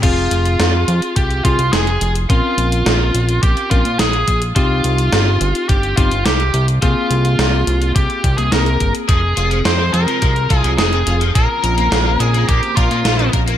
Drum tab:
CC |x---------------|----------------|----------------|----------------|
HH |x-xxx-xxxxxxxxxx|x-xxx-xxxxxxxxxx|x-xxx-xxxxxxxxxx|x-xxx-xxxxxxxxxx|
SD |----o-------o---|----o-------o---|----o-------o---|----o-------o---|
BD |o-------o-o-----|o-------o-o---o-|o-------o-o-----|o-------o-o---o-|

CC |----------------|----------------|
HH |x-xxx-xxxxxxxxxx|x-xxx-xxxxxxxxxx|
SD |----o-------o---|----o-------o---|
BD |o-------o-o-----|o-------o-o---o-|